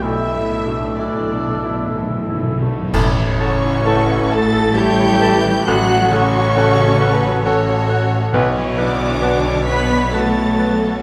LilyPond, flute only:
\new Staff \with { instrumentName = "Flute" } { \time 3/4 \key a \mixolydian \tempo 4 = 66 e'''4 e'''4. r8 | r8 cis''4 a''8 g''4 | fis''8 cis''2 r8 | r8 d''4 b''8 a''4 | }